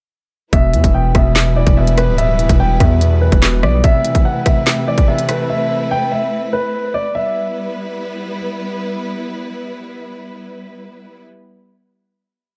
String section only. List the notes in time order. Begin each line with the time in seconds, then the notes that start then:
0.53 G3 B3 E4 B4
3.84 A3 C4 E4 B4
7.15 G3 B3 E4 B4